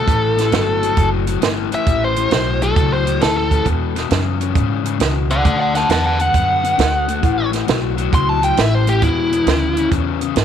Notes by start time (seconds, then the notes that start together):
Already playing: A4
0.07 A1 A2 E3, kick, closed hi-hat
0.37 A2 E3, snare, closed hi-hat
0.51 G1 A2 F#3, snare, closed hi-hat
0.81 A2 F#3, closed hi-hat
0.96 F#1 A2 F#3, kick, closed hi-hat
1.27 A2 F#3, closed hi-hat
1.41 G1 A2 E3, snare, closed hi-hat
1.72 A2 E3 E5, muted upright bass stroke, closed hi-hat
1.87 A1 A2 E3, kick, closed hi-hat
2.04 C5
2.16 A2 E3, closed hi-hat
2.31 B1 A2 F#3 C5, snare, closed hi-hat
2.61 A2 F#3 A4, closed hi-hat
2.76 C#2 A2 F#3, kick, closed hi-hat
2.93 C5
3.05 A2 F#3, closed hi-hat
3.20 D2 A2 E3 A4, snare, closed hi-hat
3.37 A4
3.50 A2 E3, kick, closed hi-hat
3.65 E2 B2, kick, closed hi-hat
3.95 E2 B2, snare, closed hi-hat
4.10 E2 F#2 C#3, snare, closed hi-hat
4.40 E2 C#3, closed hi-hat
4.55 E2 G#2 C#3, kick, closed hi-hat
4.84 E2 C#3, closed hi-hat
5.00 C#2 E2 B2, snare, closed hi-hat
5.30 E2 B2 D5 F#5, closed hi-hat
5.45 D2 D3 A3 D5 F#5, kick, closed hi-hat
5.60 D5 F#5
5.75 D3 A3 F#5 A5, snare, closed hi-hat
5.89 E2 D3 B3 F#5 A5, snare, closed hi-hat
6.06 F#5 A5
6.20 D3 B3 F#5, closed hi-hat
6.34 F#2 D3 B3, kick, closed hi-hat
6.63 D3 B3, closed hi-hat
6.78 D2 D3 A3, snare, closed hi-hat
7.08 D3 A3, closed hi-hat
7.22 A1 A2 E3, kick, closed hi-hat
7.52 A2 E3, snare, closed hi-hat
7.67 B1 A2 F#3, snare, closed hi-hat
7.97 A2 F#3, closed hi-hat
8.12 C#2 A2 F#3 C6, kick, closed hi-hat
8.29 A5
8.41 A2 F#3 G5, closed hi-hat
8.57 A1 A2 E3, snare, closed hi-hat
8.61 E5
8.75 C5
8.87 A2 E3 G4, closed hi-hat
9.02 E2 B2 E4, kick, closed hi-hat
9.32 E2 B2, closed hi-hat
9.46 D2 E2 C#3, snare, closed hi-hat
9.77 E2 C#3, closed hi-hat
9.91 E2 C#3, kick, closed hi-hat
10.21 E2 C#3, closed hi-hat
10.36 E2 G#2 B2, snare, closed hi-hat